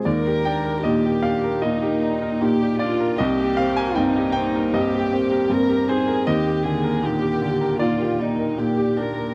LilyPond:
<<
  \new Staff \with { instrumentName = "Ambient pad" } { \time 4/4 \key ees \major \tempo 4 = 77 << { <bes g''>1~ | <bes g''>1 | <bes g''>1 | } \\ { bes'1 | c''1 | bes'1 | } >> }
  \new Staff \with { instrumentName = "Marimba" } { \time 4/4 \key ees \major ees'16 bes'16 bes'16 r16 ees'16 r8 bes'16 ees'16 bes'16 d''16 bes'16 ees'16 d''16 g'16 d''16 | c'16 g'16 g'16 r16 c'16 r8 g'16 c'16 r16 bes'16 g'16 c'16 bes'16 ees'16 bes'16 | ees'16 bes'16 bes'16 r16 ees'16 r8 bes'16 ees'16 bes'16 d''16 bes'16 ees'16 d''16 g'16 d''16 | }
  \new Staff \with { instrumentName = "Grand piano" } { \time 4/4 \key ees \major << { d''8 g''8 ees''8 f''8 ees''4. d''8 | ees''8 f''16 aes''16 g''8 g''8 ees''4. c''8 | ees''2 d''2 | } \\ { ees,16 g'16 d'16 bes'16 bes,16 g'16 d'16 bes'16 bes,16 g'16 ees'16 bes'16 bes,16 g'16 d'16 bes'16 | c,16 g'16 c'16 bes'16 g,16 g'16 c'16 bes'16 g,16 g'16 c'16 bes'16 g,16 g'16 c'16 bes'16 | ees,16 g'16 d16 bes'16 bes,16 g'16 d16 bes'16 bes,16 g'16 d''16 bes'16 bes,16 g'16 d'16 bes'16 | } >> }
  \new Staff \with { instrumentName = "Violin section" } { \time 4/4 \key ees \major bes'4 g'4 ees'4 g'8 f'8 | g'4 ees'4 g'4 bes'8 aes'8 | g'8 aes'8 g'4 f'8 ees'8 g'8 bes'8 | }
>>